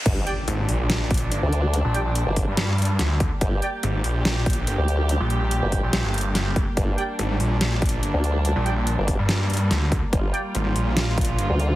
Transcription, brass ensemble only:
\new Staff \with { instrumentName = "Brass ensemble" } { \time 4/4 \key g \phrygian \tempo 4 = 143 r8 <g' d'' g''>8 r2. | r8 <g' d'' g''>8 r2. | r8 <g' d'' g''>8 r2. | r1 |
r8 <g' d'' g''>8 r2. | r8 <g' d'' g''>8 r2. | r8 <g' d'' g''>8 r2. | }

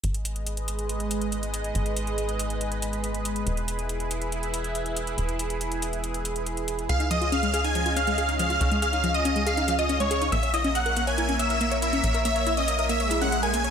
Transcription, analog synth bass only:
\new Staff \with { instrumentName = "Analog synth bass" } { \clef bass \time 4/4 \key gis \minor \tempo 4 = 140 gis,,1 | gis,,1 | e,,1 | e,,1 |
cis,1 | cis,1 | ais,,1 | ais,,1 | }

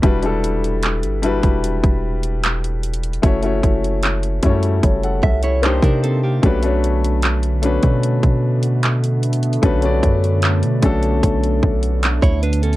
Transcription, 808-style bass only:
\new Staff \with { instrumentName = "808-style bass" } { \clef bass \time 4/4 \key b \minor \tempo 4 = 75 e,,4~ e,,16 g,,8 e,,8 e,,4.~ e,,16 | fis,,8 fis,,4 fis,8 fis,,8 c,8. c8. | b,,4.~ b,,16 b,8 b,4.~ b,16 | b,,8 fis,8. b,16 b,,8 b,,8 b,,8. d,8. | }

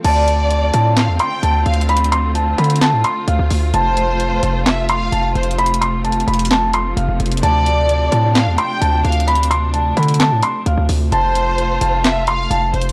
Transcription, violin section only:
\new Staff \with { instrumentName = "Violin section" } { \time 4/4 \key d \minor \tempo 4 = 130 d''2 f''8 g''4 f''8 | r1 | c''2 e''8 f''4 c''8 | r1 |
d''2 f''8 g''4 f''8 | r1 | c''2 e''8 f''4 c''8 | }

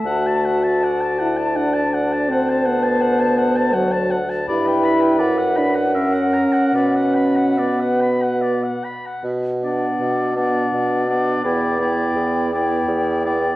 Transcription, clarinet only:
\new Staff \with { instrumentName = "Clarinet" } { \time 3/4 \key d \major \tempo 4 = 82 e''4 d''2 | c''2~ c''8 r8 | \key b \minor b'2 ais'4 | b'2~ b'8 r8 |
r8 d'4 d'4 d'8 | e'8 e'4 e'4 e'8 | }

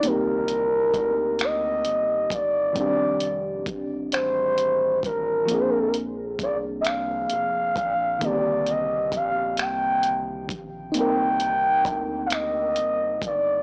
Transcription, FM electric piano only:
\new Staff \with { instrumentName = "FM electric piano" } { \time 6/8 \key c \minor \tempo 4. = 44 <bes c' ees' g'>2. | <ees g c' d' g'>2. | <f bes c' d' aes'>2. | <d ees bes c' g'>2. |
<bes c' ees' bes'>2. | }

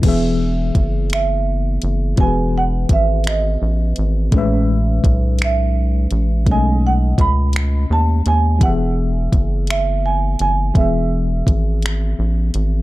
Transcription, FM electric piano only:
\new Staff \with { instrumentName = "FM electric piano" } { \time 6/8 \key e \major \tempo 4. = 56 <e b gis' e''>2. | <e b fis' gis' b'>2. | <a, gis cis' b' e''>2. | <b, gis a cis' dis''>2. |
<e b g' gis' e''>2. | <e b gis' e''>2. | }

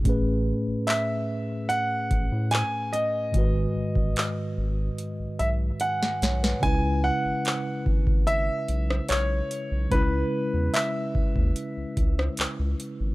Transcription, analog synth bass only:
\new Staff \with { instrumentName = "Analog synth bass" } { \clef bass \time 4/4 \key cis \minor \tempo 4 = 73 a,,8. a,,16 r4. a,,16 a,8 r8. | gis,,8 a,,16 a,,16 r8 gis,,8 r16 b,,16 b,,8 r8 b,,8 | cis,8. gis,,16 r8 gis,,4 b,,8 b,,8 r16 b,,16 | cis,8 r16 e,16 r8 dis,16 dis,16 r16 cis,16 cis,8 cis,16 cis,16 r16 gis,,16 | }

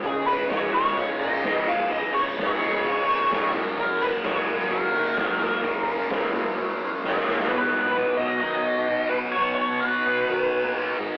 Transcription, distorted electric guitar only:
\new Staff \with { instrumentName = "Distorted electric guitar" } { \clef bass \time 4/4 \key b \lydian \tempo 4 = 129 cis8 gis8 eis8 gis8 eis'8 cis'8 eis8 gis8 | cis8 gis8 eis8 gis8 eis'8 cis'8 eis8 fis,8 | fis,8 ais8 fis8 ais8 fis'8 cis'8 fis8 ais8 | fis,8 ais8 fis8 ais8 fis'8 cis'8 fis8 ais8 |
<b, fis b>4 <b, fis b>8 <fis b>8 <b, fis b>4 <b, fis b>8 <fis b>8 | <b, fis b>4 <b, fis b>8 <fis b>8 <b, fis b>4 <b, fis b>8 <gis, dis gis>8 | }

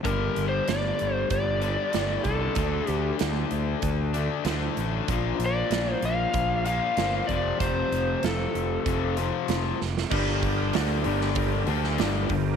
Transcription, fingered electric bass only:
\new Staff \with { instrumentName = "Fingered electric bass" } { \clef bass \time 4/4 \key g \minor \tempo 4 = 95 g,,8 g,,8 g,,8 g,,8 g,,4 g,,8 c,8 | d,8 d,8 d,8 d,8 d,4 d,8 a,,8 | bes,,8 bes,,8 bes,,8 bes,,8 bes,,4 g,,8 f,,8 | f,,8 f,,8 f,,8 f,,8 f,,4 f,,8 f,,8 |
g,,4 d,8 g,,4 d,8 g,,8 g,,8 | }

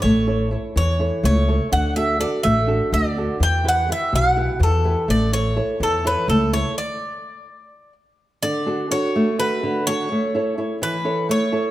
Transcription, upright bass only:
\new Staff \with { instrumentName = "Upright bass" } { \clef bass \time 7/8 \key d \major \tempo 4 = 125 a,,4. e,4 cis,4 | d,4. a,,4 d,4 | e,4. b,,4 e,4 | a,,4. e,4 cis,4 |
r2. r8 | r2. r8 | r2. r8 | }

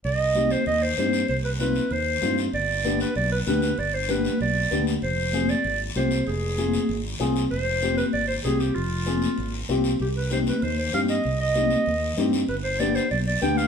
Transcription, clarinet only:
\new Staff \with { instrumentName = "Clarinet" } { \time 4/4 \key c \minor \tempo 4 = 193 ees''4. c''8 ees''8 c''8 c''4 | c''8 b'8 b'4 c''4. r8 | d''4. b'8 d''8 b'8 b'4 | d''8 c''8 b'4 d''4. r8 |
c''4. d''4 r8 c''4 | aes'2~ aes'8 r4. | c''4. b'8 d''8 c''8 aes'8 g'8 | f'2. r4 |
g'8 b'8 c''8 b'8 c''8 c''8 f''8 ees''8~ | ees''8 ees''2. r8 | b'8 c''8 d''8 c''8 d''8 d''8 g''8 f''8 | }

